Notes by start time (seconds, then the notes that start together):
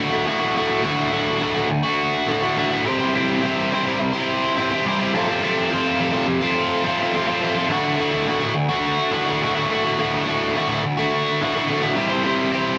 Already playing: A2
0.00 D3 A3 F#4
0.10 D3 A3 F#4
0.24 D2 A2 D3 A3
0.29 F#4
0.39 D3 A3 F#4
0.54 A2 D3 A3 F#4
0.68 D3 A3 F#4
0.81 D2 A2 D3 A3 F#4
1.10 A2 D3 A3
1.14 F#4
1.40 D2 A2 D3 A3 F#4
1.54 D3 A3 F#4
1.70 muted overdriven electric guitar stroke
1.83 D3 A3 F#4
2.27 A2 D3 A3 F#4
2.41 D3 A3 F#4
2.56 D2 A2 D3 A3 F#4
2.71 D3 A3 F#4
2.85 C3 G3 C4 E4 G4 C5
2.99 E4 G4 C5
3.03 C4
3.13 C3 G3 C4 E4 G4
3.17 C5
3.42 C4 E4 G4 C5
3.71 C3 G3 C4 E4 G4 C5
3.85 C4 E4 G4 C5
4.00 muted overdriven electric guitar stroke
4.13 E4 G4 C5
4.17 C4
4.57 C4 E4 G4 C5
4.71 C4 E4 G4 C5
4.85 C3 G3 C4 E4 G4
4.89 C5
5.00 C4 E4 G4 C5
5.14 F2 C3 F3 A3 C4 F4
5.28 F3 A3 C4 F4
5.41 F2 C3 F3 A3 C4 F4
5.70 F3 A3 C4 F4
5.99 F2 C3 F3 A3 C4 F4
6.13 A3 C4 F4
6.17 F3
6.27 muted overdriven electric guitar stroke
6.41 A3 C4 F4
6.45 F3
6.84 F3 A3 C4 F4
6.99 F3 A3 C4 F4
7.14 F2 C3 F3 A3 C4 F4
7.27 F3 A3 C4 F4
7.42 F3 A3 C4 F4
7.55 F3 A3 C4 F4
7.69 D2 A2 D3 A3 F#4
7.97 A2 D3 A3
8.01 F#4
8.26 D2 A2 D3 A3 F#4
8.40 A3 F#4
8.44 D3
8.55 muted overdriven electric guitar stroke
8.69 D3 A3 F#4
9.11 A2 D3 A3 F#4
9.25 A3 F#4
9.29 D3
9.41 D2 A2 D3 A3 F#4
9.55 D3 A3 F#4
9.69 A2 D3 A3 F#4
9.83 D3 A3 F#4
9.97 D2 A2 D3 A3 F#4
10.26 A2 D3 A3 F#4
10.55 D2 A2 D3 A3 F#4
10.69 D3 A3 F#4
10.84 muted overdriven electric guitar stroke
10.97 D3 A3 F#4
11.40 A2 D3 A3 F#4
11.54 D3 A3 F#4
11.66 D2 A2 D3 A3
11.70 F#4
11.81 D3 A3 F#4
11.95 C3 G3 C4 E4 G4 C5
12.10 C4 E4 G4 C5
12.23 C3 G3 C4 E4 G4 C5
12.52 C4 E4 G4 C5